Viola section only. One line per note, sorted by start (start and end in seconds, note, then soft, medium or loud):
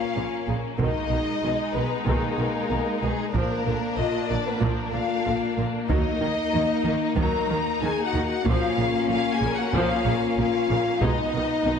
0.16 0.24 C#3 soft
0.48 0.56 C#3 soft
0.78 1.09 D#3 medium
0.78 3.31 G#3 medium
1.12 1.20 D#3 soft
1.43 1.51 D#3 soft
1.77 1.85 D#3 soft
2.08 2.38 D#3 medium
2.40 2.48 D#3 soft
2.73 2.81 D#3 soft
3.05 3.13 D#3 soft
3.35 3.65 F3 medium
3.35 8.42 A#3 medium
3.67 3.75 D3 soft
3.99 4.07 D3 soft
4.31 4.39 D3 soft
4.61 4.92 F3 medium
4.92 5.00 D3 soft
5.26 5.34 D3 soft
5.59 5.67 D3 soft
5.90 6.20 F#3 medium
6.22 6.30 D#3 soft
6.55 6.63 D#3 soft
6.89 6.97 D#3 soft
7.19 7.49 F#3 medium
7.51 7.59 D#3 soft
7.85 7.93 D#3 medium
8.16 8.24 D#3 medium
8.47 8.76 F3 medium
8.47 10.98 A#3 medium
8.80 8.88 C#3 soft
9.12 9.20 C#3 soft
9.44 9.52 C#3 soft
9.75 10.04 F3 medium
10.06 10.14 C#3 soft
10.39 10.47 C#3 soft
10.72 10.80 C#3 soft
11.02 11.31 G#3 medium
11.02 11.79 B3 medium
11.35 11.43 D#3 soft
11.67 11.75 D#3 soft